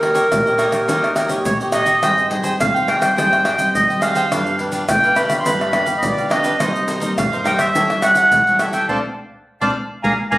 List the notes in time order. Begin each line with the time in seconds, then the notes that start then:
Already playing: D#3 A#4
0.01 A#3 C#4 D#4 G4 C#5 D#5, pandeiro, surdo
0.14 D#4 G4 C#5 D#5, pandeiro, shaker
0.31 A#2 A#3 C#4 G4, pandeiro, tamborim, shaker, surdo
0.46 G4 C#5 D#5, pandeiro, shaker, surdo
0.58 D#4 G4 C#5 D#5, pandeiro, tamborim, shaker
0.71 A#3 C#4 G4 C#5 D#5, pandeiro, tamborim, shaker, surdo
0.88 D#3 A#3 C#4 D#4 G4 C#5 D#5, pandeiro, shaker, surdo
1.04 pandeiro, tamborim, shaker
1.15 D#4 G4 C#5 D#5, pandeiro, tamborim, shaker
1.28 A#3 C#4 G4 C#5 D#5, pandeiro, shaker, surdo
1.45 A#2 C#5, pandeiro, shaker, surdo
1.60 A#3 C#4 G4 C#5 D#5, pandeiro, shaker
1.72 D#4 G4 C#5 D#5, pandeiro, tamborim, shaker
1.86 D#4 G4 C#5 D#5, pandeiro, shaker, surdo
2.02 G#2 G3 C4 D#4 G#4 C5 D#5 G5, pandeiro, tamborim, shaker, surdo
2.18 pandeiro, shaker
2.30 G3 C4 D#4 G#4 C5 D#5 G5, pandeiro, surdo
2.43 G#4 C5 D#5 G5, pandeiro, shaker
2.60 D#3 G3 C4 D#4 F5, pandeiro, tamborim, shaker, surdo
2.74 C5 D#5 G5, pandeiro, shaker, surdo
2.87 G#4 C5 D#5 G5, pandeiro, tamborim
3.00 G3 C4 D#4 C5 D#5 G5, pandeiro, tamborim, shaker, surdo
3.16 G#2 G3 C4 D#4 G#4 C5 D#5 G5, pandeiro, shaker, surdo
3.33 pandeiro, tamborim, shaker
3.44 G#4 C5 D#5 G5, pandeiro, tamborim
3.57 G3 C4 D#4 C5 D#5 G5, pandeiro, shaker, surdo
3.74 D#3 D#5, pandeiro, shaker, surdo
3.89 G3 C4 D#4 C5 D#5 G5, pandeiro, shaker
4.01 G#4 C5 D#5 F5 G5, pandeiro, tamborim, shaker
4.15 G#4 C5 D#5 G5, pandeiro, shaker, surdo
4.31 G2 F3 B3 D4 G4 B4 F5, pandeiro, tamborim, shaker, surdo
4.46 pandeiro, shaker
4.58 D4 G4 B4 F5, pandeiro, surdo
4.72 F3 B3 D4 G4 B4 F5, pandeiro, shaker
4.89 D3 F3 B3 D4 G5, pandeiro, tamborim, shaker, surdo
5.03 G4 B4 F5, pandeiro, shaker, surdo
5.15 D4 G4 B4 F5 B5, pandeiro, tamborim, shaker
5.29 F3 B3 D4 G4 B4 F5, pandeiro, tamborim, shaker, surdo
5.39 C6
5.45 G2 D4 G4 B4 F5 B5, pandeiro, shaker, surdo
5.61 pandeiro, tamborim, shaker
5.72 F3 B3 D4 G4 B4 F5, pandeiro, tamborim
5.85 G4 B4 F5, pandeiro, shaker, surdo
5.97 D#5
6.03 D3 F3 B3 D4 D5, pandeiro, shaker, surdo
6.18 G4 B4 F5, pandeiro, shaker
6.29 F3 B3 D4 G4 B4 D#5 F5, pandeiro, tamborim
6.43 D4 G4 B4 F5, pandeiro, shaker, surdo
6.59 C3 G3 A#3 D#4 A#4 C5 D#5, pandeiro, tamborim, shaker, surdo
6.76 pandeiro, shaker
6.87 D#4 A#4 C5 D#5, pandeiro, shaker
7.00 G3 A#3 D#4 A#4 C5 D#5, pandeiro, shaker
7.18 G2 F5, pandeiro, tamborim, shaker, surdo
7.32 A#4 C5 D#5, pandeiro, shaker, surdo
7.44 G3 A#3 D#4 A#4 C5 D#5 G5, pandeiro, tamborim, shaker
7.58 A#4 C5 D#5 E5, pandeiro, tamborim, shaker, surdo
7.75 A2 G3 C#4 E4 G4 A4 C#5 E5, pandeiro, shaker, surdo
7.90 pandeiro, tamborim, shaker
8.02 G3 C#4 E4 G4 A4 C#5 E5 F#5, pandeiro, tamborim, shaker
8.15 A4 C#5 E5 F#5, pandeiro, shaker, surdo
8.32 E3, pandeiro, shaker, surdo
8.47 G3 C#4 E4 A4 C#5 E5, pandeiro, shaker
8.59 G4 A4 C#5 E5, pandeiro, tamborim, shaker
8.73 G4 A4 C#5 E5 G5, pandeiro, shaker, surdo
8.89 A3 C4 D4 A4 C5 D5 F5 A5, surdo
9.61 A3 C4 D4 A4 C5 D5 F5 A5, surdo
10.03 G#3 A#3 D4 G#4 A#4 D5 F5 G#5 A#5, surdo
10.31 G#3 A#3 D4 G#4 A#4 D5 F5 G#5 A#5, surdo